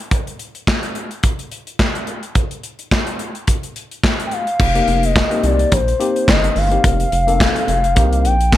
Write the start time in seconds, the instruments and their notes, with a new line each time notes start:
0.11 kick, closed hi-hat
0.27 closed hi-hat
0.39 closed hi-hat
0.55 closed hi-hat
0.67 kick, snare, clap
0.83 closed hi-hat
0.95 closed hi-hat
1.11 closed hi-hat
1.23 kick, closed hi-hat
1.39 closed hi-hat
1.51 closed hi-hat
1.67 closed hi-hat
1.79 kick, snare, clap
1.95 closed hi-hat
2.07 closed hi-hat
2.23 closed hi-hat
2.35 kick, closed hi-hat
2.51 closed hi-hat
2.63 closed hi-hat
2.79 closed hi-hat
2.91 kick, snare, clap
3.07 closed hi-hat
3.19 closed hi-hat
3.35 closed hi-hat
3.47 kick, closed hi-hat
3.63 closed hi-hat
3.76 closed hi-hat
3.91 closed hi-hat
4.03 kick, snare, clap
4.20 closed hi-hat
4.27 soft synth lead G5
4.31 soft synth lead F5, closed hi-hat
4.47 closed hi-hat
4.59 analog synth bass F1, kick, crash
4.75 tine electric piano A#3 C4 D#4 G4, closed hi-hat
4.88 analog synth bass F1, closed hi-hat
5.03 soft synth lead D#5, closed hi-hat
5.16 kick, snare, clap
5.31 tine electric piano A#3 C4 D#4 G4, closed hi-hat
5.43 analog synth bass C2, soft synth lead D5, closed hi-hat
5.59 closed hi-hat
5.72 analog synth bass A#1, soft synth lead C5, kick, closed hi-hat
5.88 closed hi-hat
5.99 tine electric piano A#3 C4 D#4 G4, closed hi-hat
6.16 closed hi-hat
6.28 analog synth bass G1, soft synth lead D#5, kick, snare, clap
6.44 closed hi-hat
6.56 analog synth bass G1, soft synth lead F5, open hi-hat
6.71 tine electric piano A#3 C4 D#4 G4, closed hi-hat
6.84 analog synth bass F1, kick, closed hi-hat
7.00 closed hi-hat
7.12 analog synth bass F1, closed hi-hat
7.27 tine electric piano A#3 C4 D#4 A4, closed hi-hat
7.40 kick, snare, clap
7.56 closed hi-hat
7.68 analog synth bass F1, closed hi-hat
7.84 closed hi-hat
7.96 analog synth bass C2, tine electric piano A#3 C4 D#4 G4, kick, closed hi-hat
8.13 closed hi-hat
8.24 analog synth bass A#1, soft synth lead G5, closed hi-hat
8.41 closed hi-hat
8.52 analog synth bass F1, tine electric piano A#3 C4 D#4 G4, kick, snare, clap